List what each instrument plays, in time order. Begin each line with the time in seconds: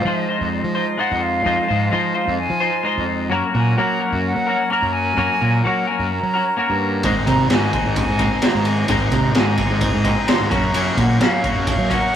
0.05 clean electric guitar F3 G#3 D#4 F4 C5, fingered electric bass F3, flute D#5
0.29 clean electric guitar D#4 F4 C5
0.41 fingered electric bass F2
0.53 flute D#5
0.64 fingered electric bass F3
0.75 clean electric guitar D#4 F4 C5
0.98 clean electric guitar G#3 D#4 F4 C5, flute F#5
1.11 fingered electric bass F2
1.23 flute F5
1.45 fingered electric bass F2, clean electric guitar F3 G#3 D#4 F4 C5
1.68 fingered electric bass G#2, clean electric guitar D#4 F4 C5
1.91 clean electric guitar F3 G#3 D#4 F4 C5, fingered electric bass F3, flute D#5
2.14 clean electric guitar D#4 F4 C5, flute F5
2.27 fingered electric bass F2
2.38 flute G#5
2.50 fingered electric bass F3
2.60 clean electric guitar D#4 F4 C5
2.83 clean electric guitar G#3 D#4 F4 C5
2.97 fingered electric bass F2
3.30 fingered electric bass F#2, clean electric guitar F#3 A#3 C#4 F#4 A#4
3.54 fingered electric bass A#2, clean electric guitar C#4 F#4 A#4, flute G#5
3.77 clean electric guitar F#3 A#3 C#4 F#4 A#4, fingered electric bass F#3, flute F#5
4.00 clean electric guitar C#4 F#4 A#4
4.12 fingered electric bass F#2
4.25 flute F#5
4.36 fingered electric bass F#3
4.47 clean electric guitar C#4 F#4 A#4
4.70 clean electric guitar A#3 C#4 F#4 A#4, flute A#5
4.82 fingered electric bass F#2
4.93 flute G#5
5.17 fingered electric bass F#2, clean electric guitar F#3 A#3 C#4 F#4 A#4
5.41 fingered electric bass A#2, clean electric guitar C#4 F#4 A#4
5.64 clean electric guitar F#3 A#3 C#4 F#4 A#4, fingered electric bass F#3, flute F#5
5.87 clean electric guitar C#4 F#4 A#4, flute G#5
5.99 fingered electric bass F#2
6.11 flute A#5
6.23 fingered electric bass F#3
6.34 clean electric guitar C#4 F#4 A#4
6.57 clean electric guitar A#3 C#4 F#4 A#4
6.70 fingered electric bass G2
7.03 clean electric guitar G#2 D#3 G#3 C4 D#4, fingered electric bass G#2, kick, ride
7.26 fingered electric bass C3, clean electric guitar G#3 C4 D#4, flute A#5, kick, ride
7.49 clean electric guitar G#2 D#3 G#3 C4 D#4, fingered electric bass G#2, flute G#5, snare, ride
7.72 clean electric guitar G#3 C4 D#4, kick, ride
7.86 fingered electric bass G#2
7.96 flute G#5, kick, ride
8.09 fingered electric bass G#2
8.19 clean electric guitar G#3 C4 D#4, kick, ride
8.42 clean electric guitar D#3 G#3 C4 D#4, flute A#5, snare, ride
8.55 fingered electric bass G#2
8.65 flute G#5, ride
8.88 clean electric guitar G#2 D#3 G#3 C4 D#4, fingered electric bass G#2, kick, ride
9.11 fingered electric bass C3, clean electric guitar G#3 C4 D#4, flute A#5, kick, ride
9.35 clean electric guitar G#2 D#3 G#3 C4 D#4, fingered electric bass G#2, flute G#5, snare, ride
9.57 clean electric guitar G#3 C4 D#4, kick, ride
9.70 fingered electric bass G#2
9.81 flute G#5, kick, ride
9.94 fingered electric bass G#2
10.04 clean electric guitar G#3 C4 D#4, kick, ride
10.28 clean electric guitar D#3 G#3 C4 D#4, flute C6, snare, ride
10.40 fingered electric bass G#2
10.50 fingered electric bass F#2, clean electric guitar F#2 C#3 F#3 A#3 C#4, flute A#5, kick, ride
10.73 clean electric guitar F#2 C#3 F#3 A#3 C#4, ride
10.96 fingered electric bass A#2, clean electric guitar F#3 A#3 C#4, flute F#5, kick, ride
11.20 clean electric guitar F#2 C#3 F#3 A#3 C#4, fingered electric bass F#3, flute F5, snare, ride
11.44 clean electric guitar F#3 A#3 C#4, kick, ride
11.55 fingered electric bass F#2
11.67 flute F5, kick, ride
11.79 fingered electric bass F#3
11.90 clean electric guitar F#3 A#3 C#4, flute F#5, kick, ride